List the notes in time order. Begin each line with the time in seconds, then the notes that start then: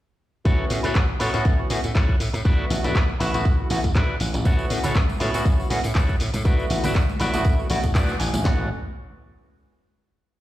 0.45 A1 B3 C#4 E4 F#4 A4 C#5, kick, closed hi-hat, tambourine
0.70 A2, open hi-hat, tambourine
0.83 A2 E4 F#4 A4 C#5, closed hi-hat, tambourine
0.95 A1 B3 C#4 E4 F#4, kick, clap, closed hi-hat
1.20 A2 B3 C#4 E4 F#4 A4 C#5, open hi-hat, tambourine
1.33 A2 B3 C#4 E4 F#4, closed hi-hat, tambourine
1.45 A1, kick, closed hi-hat, tambourine
1.59 B3 C#4 E4 F#4
1.70 A2 B3 C#4 E4 F#4, open hi-hat, tambourine
1.84 A2, closed hi-hat, tambourine
1.95 A1 E4 F#4 A4 C#5, kick, clap, closed hi-hat, tambourine
2.09 kick
2.20 A2, open hi-hat, tambourine
2.34 A2, muted clean electric guitar stroke, closed hi-hat, tambourine
2.45 D2 A3 B3 E4 F#4 B4 D5, kick, closed hi-hat
2.70 A1, open hi-hat, tambourine
2.84 A1 E4 F#4 B4 D5, closed hi-hat, tambourine
2.95 A3 B3 E4 F#4, kick, clap, closed hi-hat, tambourine
3.20 A1 A3 B3 E4 F#4 B4 E5, open hi-hat, tambourine
3.34 A1 A3 B3 E4 F#4, closed hi-hat, tambourine
3.45 D2, kick, closed hi-hat, tambourine
3.59 A3 B3 E4 F#4
3.70 A1 A3 B3 E4 F#4, open hi-hat, tambourine
3.84 A1, kick, closed hi-hat, tambourine
3.95 D2 E4 F#4 B4 D5, kick, clap, closed hi-hat, tambourine
4.20 A1, open hi-hat, tambourine
4.34 A1, muted clean electric guitar stroke, closed hi-hat, tambourine
4.45 A1 B3 C#4 E4 F#4 A4 C#5, kick, closed hi-hat, tambourine
4.59 tambourine
4.70 A2, open hi-hat, tambourine
4.84 A2 E4 F#4 A4 C#5, closed hi-hat, tambourine, low conga
4.85 tambourine
4.95 A1 B3 C#4 E4 F#4, kick, clap, closed hi-hat, tambourine
5.09 tambourine, high conga
5.20 A2 B3 C#4 E4 F#4 A4 C#5, open hi-hat, tambourine
5.34 A2 B3 C#4 E4 F#4, closed hi-hat, tambourine
5.45 A1, kick, closed hi-hat, tambourine
5.59 B3 C#4 E4 F#4, tambourine
5.70 A2 B3 C#4 E4 F#4, open hi-hat, tambourine, high conga
5.84 A2, closed hi-hat, tambourine
5.95 A1 E4 F#4 A4 C#5, kick, clap, closed hi-hat, tambourine
6.09 kick, tambourine
6.20 A2, open hi-hat, tambourine
6.34 A2, muted clean electric guitar stroke, closed hi-hat, tambourine, high conga
6.44 D2 A3 B3 E4 F#4 B4 D5, kick, closed hi-hat, tambourine
6.59 tambourine
6.70 A1, open hi-hat, tambourine
6.84 A1 E4 F#4 B4 D5, closed hi-hat, tambourine, low conga
6.95 D2 A3 B3 E4 F#4, kick, clap, closed hi-hat, tambourine
7.09 tambourine, high conga
7.20 A1 A3 B3 E4 F#4 B4 D5, open hi-hat, tambourine
7.34 A1 A3 B3 E4 F#4, closed hi-hat, tambourine
7.45 D2, kick, closed hi-hat, tambourine
7.58 A3 B3 E4 F#4, tambourine
7.70 A1 A3 B3 E4 F#4 D5, open hi-hat, tambourine, high conga
7.83 A1, kick, closed hi-hat, tambourine
7.95 D2 E4 F#4 B4 D5 F#5, kick, clap, closed hi-hat, tambourine
8.09 tambourine
8.20 A1 G#5, open hi-hat, tambourine
8.33 A1, muted clean electric guitar stroke, closed hi-hat, tambourine, high conga
8.44 A1 B3 C#4 E4 F#4 A4 C#5, kick, snare, clap